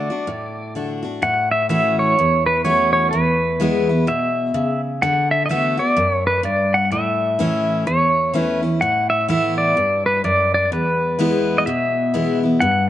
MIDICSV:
0, 0, Header, 1, 3, 480
1, 0, Start_track
1, 0, Tempo, 474308
1, 1250, Time_signature, 4, 2, 24, 8
1, 13053, End_track
2, 0, Start_track
2, 0, Title_t, "Pedal steel guitar"
2, 0, Program_c, 0, 26
2, 0, Note_on_c, 0, 74, 83
2, 740, Note_off_c, 0, 74, 0
2, 1243, Note_on_c, 0, 78, 99
2, 1529, Note_off_c, 0, 78, 0
2, 1533, Note_on_c, 0, 76, 88
2, 1707, Note_off_c, 0, 76, 0
2, 1719, Note_on_c, 0, 76, 92
2, 2016, Note_on_c, 0, 73, 92
2, 2025, Note_off_c, 0, 76, 0
2, 2465, Note_off_c, 0, 73, 0
2, 2494, Note_on_c, 0, 71, 79
2, 2672, Note_off_c, 0, 71, 0
2, 2679, Note_on_c, 0, 73, 89
2, 2951, Note_off_c, 0, 73, 0
2, 2964, Note_on_c, 0, 73, 79
2, 3141, Note_off_c, 0, 73, 0
2, 3145, Note_on_c, 0, 71, 85
2, 4132, Note_on_c, 0, 76, 80
2, 4146, Note_off_c, 0, 71, 0
2, 4862, Note_off_c, 0, 76, 0
2, 5083, Note_on_c, 0, 78, 111
2, 5372, Note_off_c, 0, 78, 0
2, 5376, Note_on_c, 0, 76, 94
2, 5518, Note_off_c, 0, 76, 0
2, 5522, Note_on_c, 0, 75, 70
2, 5569, Note_off_c, 0, 75, 0
2, 5574, Note_on_c, 0, 76, 99
2, 5862, Note_on_c, 0, 74, 93
2, 5872, Note_off_c, 0, 76, 0
2, 6196, Note_off_c, 0, 74, 0
2, 6196, Note_on_c, 0, 73, 93
2, 6308, Note_off_c, 0, 73, 0
2, 6344, Note_on_c, 0, 71, 78
2, 6526, Note_off_c, 0, 71, 0
2, 6530, Note_on_c, 0, 74, 86
2, 6822, Note_on_c, 0, 78, 92
2, 6830, Note_off_c, 0, 74, 0
2, 6997, Note_off_c, 0, 78, 0
2, 7007, Note_on_c, 0, 76, 92
2, 7927, Note_off_c, 0, 76, 0
2, 7966, Note_on_c, 0, 73, 75
2, 8512, Note_off_c, 0, 73, 0
2, 8512, Note_on_c, 0, 71, 75
2, 8698, Note_off_c, 0, 71, 0
2, 8915, Note_on_c, 0, 78, 103
2, 9204, Note_off_c, 0, 78, 0
2, 9208, Note_on_c, 0, 76, 94
2, 9399, Note_off_c, 0, 76, 0
2, 9411, Note_on_c, 0, 76, 99
2, 9693, Note_on_c, 0, 74, 97
2, 9710, Note_off_c, 0, 76, 0
2, 10177, Note_off_c, 0, 74, 0
2, 10182, Note_on_c, 0, 71, 77
2, 10366, Note_off_c, 0, 71, 0
2, 10370, Note_on_c, 0, 74, 90
2, 10658, Note_off_c, 0, 74, 0
2, 10671, Note_on_c, 0, 74, 86
2, 10840, Note_off_c, 0, 74, 0
2, 10859, Note_on_c, 0, 71, 88
2, 11722, Note_on_c, 0, 75, 60
2, 11784, Note_off_c, 0, 71, 0
2, 11792, Note_off_c, 0, 75, 0
2, 11800, Note_on_c, 0, 76, 88
2, 12534, Note_off_c, 0, 76, 0
2, 12756, Note_on_c, 0, 78, 112
2, 13046, Note_off_c, 0, 78, 0
2, 13053, End_track
3, 0, Start_track
3, 0, Title_t, "Steel-string acoustic guitar"
3, 0, Program_c, 1, 25
3, 101, Note_on_c, 1, 66, 53
3, 118, Note_on_c, 1, 62, 46
3, 276, Note_on_c, 1, 45, 81
3, 282, Note_off_c, 1, 66, 0
3, 291, Note_off_c, 1, 62, 0
3, 760, Note_on_c, 1, 50, 54
3, 768, Note_on_c, 1, 57, 57
3, 770, Note_on_c, 1, 62, 52
3, 775, Note_on_c, 1, 66, 63
3, 1026, Note_off_c, 1, 66, 0
3, 1038, Note_on_c, 1, 66, 49
3, 1045, Note_off_c, 1, 50, 0
3, 1046, Note_off_c, 1, 62, 0
3, 1049, Note_off_c, 1, 57, 0
3, 1058, Note_on_c, 1, 62, 46
3, 1205, Note_off_c, 1, 45, 0
3, 1231, Note_off_c, 1, 66, 0
3, 1236, Note_on_c, 1, 45, 82
3, 1241, Note_off_c, 1, 62, 0
3, 1713, Note_on_c, 1, 52, 79
3, 1720, Note_on_c, 1, 57, 76
3, 1723, Note_on_c, 1, 61, 81
3, 1729, Note_on_c, 1, 66, 76
3, 2165, Note_off_c, 1, 45, 0
3, 2182, Note_off_c, 1, 52, 0
3, 2186, Note_off_c, 1, 57, 0
3, 2188, Note_off_c, 1, 61, 0
3, 2190, Note_off_c, 1, 66, 0
3, 2213, Note_on_c, 1, 40, 83
3, 2677, Note_on_c, 1, 52, 77
3, 2680, Note_on_c, 1, 57, 78
3, 2685, Note_on_c, 1, 61, 78
3, 2692, Note_on_c, 1, 66, 85
3, 3133, Note_off_c, 1, 40, 0
3, 3144, Note_off_c, 1, 52, 0
3, 3146, Note_off_c, 1, 57, 0
3, 3148, Note_off_c, 1, 61, 0
3, 3152, Note_off_c, 1, 66, 0
3, 3164, Note_on_c, 1, 40, 86
3, 3640, Note_on_c, 1, 52, 87
3, 3649, Note_on_c, 1, 56, 89
3, 3655, Note_on_c, 1, 59, 84
3, 3664, Note_on_c, 1, 64, 91
3, 3925, Note_off_c, 1, 52, 0
3, 3926, Note_off_c, 1, 64, 0
3, 3929, Note_off_c, 1, 56, 0
3, 3932, Note_off_c, 1, 59, 0
3, 3938, Note_on_c, 1, 64, 53
3, 3955, Note_on_c, 1, 59, 49
3, 4089, Note_off_c, 1, 40, 0
3, 4120, Note_off_c, 1, 64, 0
3, 4120, Note_on_c, 1, 47, 81
3, 4129, Note_off_c, 1, 59, 0
3, 4586, Note_off_c, 1, 47, 0
3, 4597, Note_on_c, 1, 49, 79
3, 5064, Note_off_c, 1, 49, 0
3, 5088, Note_on_c, 1, 50, 86
3, 5547, Note_off_c, 1, 50, 0
3, 5559, Note_on_c, 1, 50, 71
3, 5569, Note_on_c, 1, 57, 88
3, 5575, Note_on_c, 1, 59, 97
3, 5582, Note_on_c, 1, 66, 83
3, 5831, Note_off_c, 1, 66, 0
3, 5843, Note_on_c, 1, 66, 59
3, 5844, Note_off_c, 1, 50, 0
3, 5849, Note_off_c, 1, 57, 0
3, 5852, Note_off_c, 1, 59, 0
3, 5867, Note_on_c, 1, 59, 48
3, 6033, Note_off_c, 1, 66, 0
3, 6037, Note_on_c, 1, 42, 85
3, 6045, Note_off_c, 1, 59, 0
3, 6504, Note_off_c, 1, 42, 0
3, 6511, Note_on_c, 1, 43, 85
3, 6981, Note_off_c, 1, 43, 0
3, 6999, Note_on_c, 1, 45, 78
3, 7477, Note_on_c, 1, 52, 83
3, 7487, Note_on_c, 1, 57, 82
3, 7488, Note_on_c, 1, 61, 81
3, 7496, Note_on_c, 1, 64, 96
3, 7926, Note_off_c, 1, 45, 0
3, 7944, Note_off_c, 1, 52, 0
3, 7949, Note_off_c, 1, 57, 0
3, 7950, Note_off_c, 1, 61, 0
3, 7954, Note_off_c, 1, 64, 0
3, 7963, Note_on_c, 1, 40, 82
3, 8435, Note_on_c, 1, 52, 81
3, 8442, Note_on_c, 1, 57, 72
3, 8451, Note_on_c, 1, 61, 88
3, 8456, Note_on_c, 1, 64, 86
3, 8717, Note_off_c, 1, 64, 0
3, 8722, Note_off_c, 1, 52, 0
3, 8725, Note_off_c, 1, 57, 0
3, 8729, Note_on_c, 1, 64, 55
3, 8730, Note_off_c, 1, 61, 0
3, 8746, Note_on_c, 1, 61, 47
3, 8888, Note_off_c, 1, 40, 0
3, 8916, Note_off_c, 1, 64, 0
3, 8924, Note_off_c, 1, 61, 0
3, 8926, Note_on_c, 1, 45, 79
3, 9396, Note_on_c, 1, 52, 79
3, 9399, Note_on_c, 1, 57, 79
3, 9409, Note_on_c, 1, 59, 89
3, 9412, Note_on_c, 1, 64, 93
3, 9849, Note_off_c, 1, 45, 0
3, 9863, Note_off_c, 1, 52, 0
3, 9865, Note_off_c, 1, 57, 0
3, 9870, Note_off_c, 1, 59, 0
3, 9871, Note_off_c, 1, 64, 0
3, 9886, Note_on_c, 1, 43, 82
3, 10348, Note_off_c, 1, 43, 0
3, 10363, Note_on_c, 1, 42, 79
3, 10826, Note_off_c, 1, 42, 0
3, 10848, Note_on_c, 1, 40, 88
3, 11320, Note_on_c, 1, 52, 85
3, 11326, Note_on_c, 1, 56, 87
3, 11333, Note_on_c, 1, 59, 92
3, 11339, Note_on_c, 1, 64, 89
3, 11769, Note_off_c, 1, 40, 0
3, 11784, Note_off_c, 1, 52, 0
3, 11787, Note_off_c, 1, 56, 0
3, 11791, Note_off_c, 1, 59, 0
3, 11794, Note_off_c, 1, 64, 0
3, 11810, Note_on_c, 1, 47, 84
3, 12283, Note_on_c, 1, 52, 85
3, 12287, Note_on_c, 1, 56, 77
3, 12293, Note_on_c, 1, 59, 83
3, 12295, Note_on_c, 1, 64, 90
3, 12564, Note_off_c, 1, 52, 0
3, 12566, Note_off_c, 1, 56, 0
3, 12569, Note_off_c, 1, 59, 0
3, 12570, Note_off_c, 1, 64, 0
3, 12581, Note_on_c, 1, 64, 57
3, 12603, Note_on_c, 1, 59, 44
3, 12730, Note_off_c, 1, 47, 0
3, 12760, Note_off_c, 1, 64, 0
3, 12766, Note_on_c, 1, 43, 88
3, 12771, Note_off_c, 1, 59, 0
3, 13053, Note_off_c, 1, 43, 0
3, 13053, End_track
0, 0, End_of_file